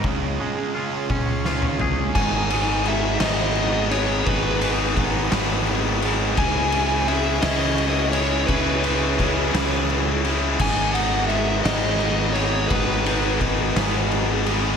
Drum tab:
CC |------------|x-----------|------------|------------|
RD |------------|--x-x-x-x-x-|x-x-x-x-x-x-|x-x-x-x-x-x-|
SD |--------o---|------o-----|------o-----|------o-----|
T1 |------o-----|------------|------------|------------|
T2 |---------o--|------------|------------|------------|
FT |----------o-|------------|------------|------------|
BD |o-----o-----|o-----------|o---o-------|o-----------|

CC |------------|x-----------|------------|
RD |x-x-x-x-x-x-|--x-x-x-x-x-|x-x-x-x-x-x-|
SD |------o-----|------o-----|------o-----|
T1 |------------|------------|------------|
T2 |------------|------------|------------|
FT |------------|------------|------------|
BD |o---o-------|o-----------|o---o-------|